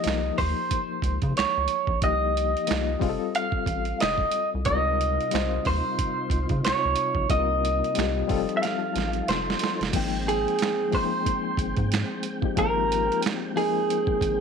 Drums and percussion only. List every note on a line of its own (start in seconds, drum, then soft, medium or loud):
0.04 snare medium
0.04 closed hi-hat medium
0.08 finger snap medium
0.38 kick medium
0.38 open hi-hat medium
0.71 kick medium
0.71 closed hi-hat medium
1.02 kick medium
1.02 closed hi-hat medium
1.22 kick medium
1.22 closed hi-hat soft
1.37 finger snap medium
1.37 snare loud
1.37 closed hi-hat medium
1.68 closed hi-hat medium
1.87 kick medium
2.02 kick loud
2.02 closed hi-hat medium
2.37 closed hi-hat medium
2.57 closed hi-hat soft
2.67 snare loud
2.67 closed hi-hat medium
2.72 finger snap medium
3.01 kick loud
3.01 open hi-hat medium
3.35 closed hi-hat medium
3.52 kick medium
3.66 kick medium
3.66 closed hi-hat medium
3.85 closed hi-hat soft
4.00 finger snap medium
4.00 snare loud
4.00 closed hi-hat medium
4.18 kick medium
4.32 closed hi-hat medium
4.65 kick loud
4.65 closed hi-hat medium
5.01 closed hi-hat medium
5.21 closed hi-hat soft
5.31 snare medium
5.31 closed hi-hat medium
5.36 finger snap medium
5.65 kick medium
5.65 open hi-hat medium
5.99 kick medium
5.99 closed hi-hat medium
6.30 kick medium
6.30 closed hi-hat medium
6.49 kick medium
6.49 closed hi-hat soft
6.65 finger snap medium
6.65 snare medium
6.65 closed hi-hat medium
6.96 closed hi-hat medium
7.15 kick medium
7.30 kick loud
7.30 closed hi-hat medium
7.65 closed hi-hat medium
7.84 closed hi-hat soft
7.95 snare medium
7.95 closed hi-hat medium
8.00 finger snap medium
8.29 kick medium
8.29 open hi-hat medium
8.49 closed hi-hat soft
8.63 snare medium
8.63 closed hi-hat medium
8.96 snare medium
8.96 closed hi-hat medium
9.13 closed hi-hat soft
9.28 snare medium
9.28 closed hi-hat medium
9.50 snare medium
9.59 closed hi-hat medium
9.64 snare medium
9.81 snare medium
9.81 closed hi-hat soft
9.93 kick loud
9.93 closed hi-hat medium
9.93 crash medium
10.29 closed hi-hat medium
10.48 closed hi-hat soft
10.59 snare medium
10.59 closed hi-hat medium
10.63 finger snap medium
10.92 kick medium
10.92 open hi-hat medium
11.26 kick medium
11.26 closed hi-hat medium
11.57 kick medium
11.57 closed hi-hat medium
11.77 kick medium
11.77 closed hi-hat soft
11.92 finger snap medium
11.92 snare loud
11.92 closed hi-hat medium
12.23 closed hi-hat medium
12.42 kick medium
12.57 kick loud
12.57 closed hi-hat medium
12.92 closed hi-hat medium
13.12 closed hi-hat soft
13.22 snare medium
13.22 closed hi-hat medium
13.27 finger snap medium
13.57 open hi-hat medium
13.90 closed hi-hat medium
14.07 kick medium
14.21 kick medium
14.21 closed hi-hat medium